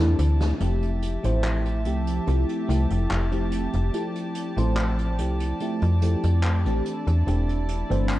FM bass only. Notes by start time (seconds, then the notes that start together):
0.00 E2
0.19 D2
0.61 F1
1.24 A1
1.86 C2
2.28 C2
2.69 C2
2.91 F1
3.11 F1
3.74 F1
4.57 A1
5.19 C2
5.82 F2
6.24 F2
6.65 A1
7.07 E2
7.27 E1
7.91 G1